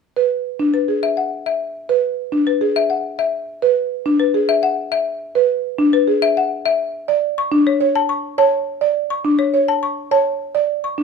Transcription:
0.16 B4
0.60 D4
0.74 B4
0.88 G#4
1.03 E5
1.17 F#5
1.46 E5
1.89 B4
2.32 D4
2.47 B4
2.61 G#4
2.76 E5
2.90 F#5
3.19 E5
3.62 B4
4.06 D4
4.20 B4
4.34 G#4
4.49 E5
4.63 F#5
4.92 E5
5.35 B4
5.78 D4
5.93 B4
6.08 G#4
6.22 E5
6.37 F#5
6.66 E5
7.08 D5
7.38 C#6
7.52 D4
7.67 C#5
7.81 C#5
7.96 A5
8.09 C#6
8.38 C#5 A5
8.81 D5
9.10 C#6
9.25 D4
9.39 C#5
9.54 C#5
9.68 A5
9.83 C#6
10.11 C#5 A5
10.55 D5
10.84 C#6
10.98 D4

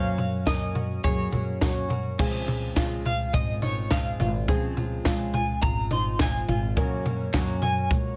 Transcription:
Already playing: F#2 C#3 F#3 A#3 C#4 F#4 C5 F5
0.18 F#3 A#3 C#4 F#4, floor tom, shaker
0.46 F#2 C#3 F#3 A#3 C#4 F#4 A#4 D#5, kick, snare, floor tom, shaker
0.75 F#3 A#3 C#4 F#4, floor tom, shaker
0.91 shaker
1.03 F#2 F#3 A#3 C#4 F#4 G#4 C#5, kick, floor tom, shaker
1.31 F#2 F#3 A#3 C#4 F#4, floor tom, shaker
1.48 shaker
1.61 F#2 C#3 F#3 A#3 C#4 F#4, kick, snare, floor tom, shaker
1.89 F#3 A#3 C#4 F#4, floor tom, shaker
2.18 C#2 C#3 F3 G#3 C4 C#4 F4 G#4 C5, kick, floor tom, crash, shaker
2.48 G#3 C4 F4, floor tom, shaker
2.63 shaker
2.76 C#2 C#3 F3 G#3 C4 F4, kick, snare, clap, floor tom, shaker
2.92 shaker
3.05 G#3 C4 F4 F5, floor tom, shaker
3.21 shaker
3.33 G#1 F3 G#3 C4 F4 D#5, kick, floor tom, shaker
3.62 G#3 C4 D#4 F4 C#5, floor tom, shaker
3.91 C#3 F3 G#3 C4 F4 F5, kick, snare, clap, floor tom, shaker
4.07 shaker
4.20 G#1 G#3 C4 F4, floor tom, shaker
4.36 shaker
4.48 C#2 C#3 F3 G#3 C4 C#4 F4 G#4 C5, kick, floor tom, shaker
4.77 G#3 C4 F4, floor tom, shaker
4.93 shaker
5.05 C#2 C#3 F3 G#3 C4 F4, kick, snare, clap, floor tom, shaker
5.21 shaker
5.34 G#3 C4 F4 G#5, floor tom, shaker
5.49 shaker
5.62 G#1 F3 G#3 C4 F4 A#5, kick, floor tom, shaker
5.91 C4 D#4 F4 C6, floor tom, shaker
5.95 G#3
6.19 C#3 F3 G#3 C4 F4 G#5, kick, snare, clap, floor tom, shaker
6.34 shaker
6.48 G#1 G#3 C4 F4, floor tom, shaker
6.63 shaker
6.76 F#1 F#2 C#3 F#3 A#3 C#4 F#4 A#4 C#5, kick, floor tom, shaker
7.06 F#3 A#3 C#4 F#4, floor tom, shaker
7.20 shaker
7.33 F#2 C#3 F#3 A#3 C#4 F#4, kick, snare, clap, floor tom, shaker
7.48 shaker
7.62 F#3 A#3 C#4 F#4 G#5, floor tom, shaker
7.77 shaker
7.91 C#2 F#3 A#3 C#4 F#4, kick, floor tom, shaker

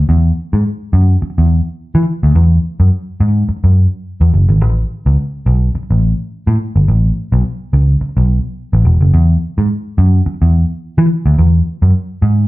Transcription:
0.09 E2
0.53 G#2
0.93 F#2
1.22 muted picked electric bass stroke
1.38 E2
1.95 E3
2.23 D2
2.35 E2
2.80 F#2
3.20 G#2
3.49 muted picked electric bass stroke
3.64 F#2
4.21 E2
4.34 F#1
4.49 G#1
4.61 A1
5.06 C#2
5.46 B1
5.75 muted picked electric bass stroke
5.91 A1
6.47 A2
6.76 G1
6.88 A1
7.32 B1
7.73 C#2
8.01 muted picked electric bass stroke
8.17 B1
8.73 A1
8.85 E1
9.01 F#1
9.14 E2
9.58 G#2
9.98 F#2
10.26 muted picked electric bass stroke
10.42 E2
10.98 E3
11.26 D2
11.38 E2
11.82 F#2
12.22 G#2

